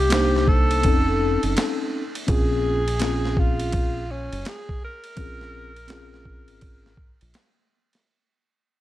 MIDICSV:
0, 0, Header, 1, 5, 480
1, 0, Start_track
1, 0, Key_signature, -5, "minor"
1, 0, Tempo, 722892
1, 1514, Time_signature, 4, 2, 24, 8
1, 5847, End_track
2, 0, Start_track
2, 0, Title_t, "Alto saxophone"
2, 0, Program_c, 0, 65
2, 0, Note_on_c, 0, 67, 107
2, 324, Note_on_c, 0, 69, 100
2, 334, Note_off_c, 0, 67, 0
2, 1279, Note_off_c, 0, 69, 0
2, 1527, Note_on_c, 0, 68, 100
2, 2253, Note_on_c, 0, 65, 96
2, 2263, Note_off_c, 0, 68, 0
2, 2732, Note_on_c, 0, 61, 91
2, 2742, Note_off_c, 0, 65, 0
2, 2978, Note_on_c, 0, 68, 95
2, 2987, Note_off_c, 0, 61, 0
2, 3206, Note_off_c, 0, 68, 0
2, 3216, Note_on_c, 0, 70, 108
2, 4859, Note_off_c, 0, 70, 0
2, 5847, End_track
3, 0, Start_track
3, 0, Title_t, "Tine electric piano"
3, 0, Program_c, 1, 4
3, 63, Note_on_c, 1, 58, 71
3, 77, Note_on_c, 1, 62, 62
3, 82, Note_on_c, 1, 63, 59
3, 91, Note_on_c, 1, 72, 67
3, 549, Note_off_c, 1, 58, 0
3, 550, Note_on_c, 1, 60, 76
3, 555, Note_off_c, 1, 62, 0
3, 557, Note_off_c, 1, 63, 0
3, 557, Note_on_c, 1, 61, 72
3, 563, Note_off_c, 1, 72, 0
3, 565, Note_on_c, 1, 63, 70
3, 573, Note_on_c, 1, 69, 88
3, 1334, Note_off_c, 1, 60, 0
3, 1338, Note_off_c, 1, 61, 0
3, 1341, Note_off_c, 1, 63, 0
3, 1346, Note_off_c, 1, 69, 0
3, 1506, Note_on_c, 1, 60, 69
3, 1513, Note_on_c, 1, 61, 70
3, 1521, Note_on_c, 1, 65, 63
3, 1529, Note_on_c, 1, 68, 80
3, 1863, Note_off_c, 1, 60, 0
3, 1867, Note_off_c, 1, 61, 0
3, 1871, Note_off_c, 1, 65, 0
3, 1875, Note_off_c, 1, 68, 0
3, 1992, Note_on_c, 1, 60, 66
3, 1999, Note_on_c, 1, 61, 66
3, 2009, Note_on_c, 1, 65, 61
3, 2015, Note_on_c, 1, 68, 83
3, 2667, Note_off_c, 1, 60, 0
3, 2671, Note_off_c, 1, 61, 0
3, 2676, Note_off_c, 1, 65, 0
3, 2679, Note_off_c, 1, 68, 0
3, 3429, Note_on_c, 1, 60, 75
3, 3439, Note_on_c, 1, 61, 67
3, 3445, Note_on_c, 1, 65, 64
3, 3454, Note_on_c, 1, 68, 79
3, 3785, Note_off_c, 1, 60, 0
3, 3790, Note_off_c, 1, 61, 0
3, 3793, Note_off_c, 1, 65, 0
3, 3797, Note_off_c, 1, 68, 0
3, 3901, Note_on_c, 1, 60, 76
3, 3910, Note_on_c, 1, 61, 74
3, 3920, Note_on_c, 1, 65, 75
3, 3928, Note_on_c, 1, 68, 91
3, 4582, Note_off_c, 1, 60, 0
3, 4586, Note_off_c, 1, 61, 0
3, 4591, Note_off_c, 1, 65, 0
3, 4595, Note_off_c, 1, 68, 0
3, 5847, End_track
4, 0, Start_track
4, 0, Title_t, "Fingered electric bass"
4, 0, Program_c, 2, 33
4, 0, Note_on_c, 2, 36, 97
4, 564, Note_on_c, 2, 29, 94
4, 574, Note_off_c, 2, 36, 0
4, 906, Note_off_c, 2, 29, 0
4, 952, Note_on_c, 2, 30, 80
4, 1025, Note_off_c, 2, 30, 0
4, 1520, Note_on_c, 2, 34, 114
4, 2845, Note_off_c, 2, 34, 0
4, 2873, Note_on_c, 2, 30, 77
4, 2946, Note_off_c, 2, 30, 0
4, 3434, Note_on_c, 2, 34, 102
4, 4312, Note_off_c, 2, 34, 0
4, 4312, Note_on_c, 2, 32, 83
4, 4732, Note_off_c, 2, 32, 0
4, 4796, Note_on_c, 2, 34, 79
4, 4867, Note_off_c, 2, 34, 0
4, 5847, End_track
5, 0, Start_track
5, 0, Title_t, "Drums"
5, 68, Note_on_c, 9, 44, 57
5, 68, Note_on_c, 9, 51, 79
5, 83, Note_on_c, 9, 38, 106
5, 135, Note_off_c, 9, 44, 0
5, 135, Note_off_c, 9, 51, 0
5, 149, Note_off_c, 9, 38, 0
5, 242, Note_on_c, 9, 38, 33
5, 308, Note_off_c, 9, 38, 0
5, 316, Note_on_c, 9, 36, 81
5, 382, Note_off_c, 9, 36, 0
5, 469, Note_on_c, 9, 51, 54
5, 536, Note_off_c, 9, 51, 0
5, 554, Note_on_c, 9, 51, 72
5, 562, Note_on_c, 9, 36, 90
5, 620, Note_off_c, 9, 51, 0
5, 628, Note_off_c, 9, 36, 0
5, 949, Note_on_c, 9, 51, 50
5, 1016, Note_off_c, 9, 51, 0
5, 1040, Note_on_c, 9, 44, 56
5, 1040, Note_on_c, 9, 51, 76
5, 1048, Note_on_c, 9, 38, 95
5, 1107, Note_off_c, 9, 44, 0
5, 1107, Note_off_c, 9, 51, 0
5, 1115, Note_off_c, 9, 38, 0
5, 1430, Note_on_c, 9, 51, 56
5, 1496, Note_off_c, 9, 51, 0
5, 1514, Note_on_c, 9, 51, 74
5, 1516, Note_on_c, 9, 36, 112
5, 1580, Note_off_c, 9, 51, 0
5, 1583, Note_off_c, 9, 36, 0
5, 1910, Note_on_c, 9, 51, 57
5, 1976, Note_off_c, 9, 51, 0
5, 1989, Note_on_c, 9, 44, 53
5, 1989, Note_on_c, 9, 51, 78
5, 2003, Note_on_c, 9, 38, 98
5, 2055, Note_off_c, 9, 44, 0
5, 2055, Note_off_c, 9, 51, 0
5, 2070, Note_off_c, 9, 38, 0
5, 2161, Note_on_c, 9, 38, 32
5, 2228, Note_off_c, 9, 38, 0
5, 2237, Note_on_c, 9, 36, 80
5, 2303, Note_off_c, 9, 36, 0
5, 2387, Note_on_c, 9, 51, 55
5, 2454, Note_off_c, 9, 51, 0
5, 2473, Note_on_c, 9, 51, 72
5, 2480, Note_on_c, 9, 36, 89
5, 2540, Note_off_c, 9, 51, 0
5, 2546, Note_off_c, 9, 36, 0
5, 2872, Note_on_c, 9, 51, 53
5, 2938, Note_off_c, 9, 51, 0
5, 2956, Note_on_c, 9, 44, 57
5, 2956, Note_on_c, 9, 51, 69
5, 2964, Note_on_c, 9, 38, 105
5, 3022, Note_off_c, 9, 44, 0
5, 3022, Note_off_c, 9, 51, 0
5, 3030, Note_off_c, 9, 38, 0
5, 3115, Note_on_c, 9, 36, 82
5, 3181, Note_off_c, 9, 36, 0
5, 3344, Note_on_c, 9, 51, 57
5, 3411, Note_off_c, 9, 51, 0
5, 3430, Note_on_c, 9, 51, 78
5, 3434, Note_on_c, 9, 36, 104
5, 3497, Note_off_c, 9, 51, 0
5, 3500, Note_off_c, 9, 36, 0
5, 3594, Note_on_c, 9, 38, 33
5, 3660, Note_off_c, 9, 38, 0
5, 3827, Note_on_c, 9, 51, 50
5, 3894, Note_off_c, 9, 51, 0
5, 3904, Note_on_c, 9, 44, 55
5, 3904, Note_on_c, 9, 51, 75
5, 3919, Note_on_c, 9, 38, 109
5, 3971, Note_off_c, 9, 44, 0
5, 3971, Note_off_c, 9, 51, 0
5, 3985, Note_off_c, 9, 38, 0
5, 4077, Note_on_c, 9, 38, 31
5, 4144, Note_off_c, 9, 38, 0
5, 4153, Note_on_c, 9, 36, 76
5, 4219, Note_off_c, 9, 36, 0
5, 4302, Note_on_c, 9, 51, 55
5, 4368, Note_off_c, 9, 51, 0
5, 4391, Note_on_c, 9, 51, 72
5, 4397, Note_on_c, 9, 36, 84
5, 4458, Note_off_c, 9, 51, 0
5, 4464, Note_off_c, 9, 36, 0
5, 4556, Note_on_c, 9, 38, 31
5, 4622, Note_off_c, 9, 38, 0
5, 4631, Note_on_c, 9, 36, 84
5, 4697, Note_off_c, 9, 36, 0
5, 4788, Note_on_c, 9, 51, 54
5, 4854, Note_off_c, 9, 51, 0
5, 4873, Note_on_c, 9, 44, 60
5, 4873, Note_on_c, 9, 51, 76
5, 4881, Note_on_c, 9, 38, 97
5, 4939, Note_off_c, 9, 44, 0
5, 4939, Note_off_c, 9, 51, 0
5, 4947, Note_off_c, 9, 38, 0
5, 5266, Note_on_c, 9, 51, 54
5, 5279, Note_on_c, 9, 38, 34
5, 5332, Note_off_c, 9, 51, 0
5, 5346, Note_off_c, 9, 38, 0
5, 5847, End_track
0, 0, End_of_file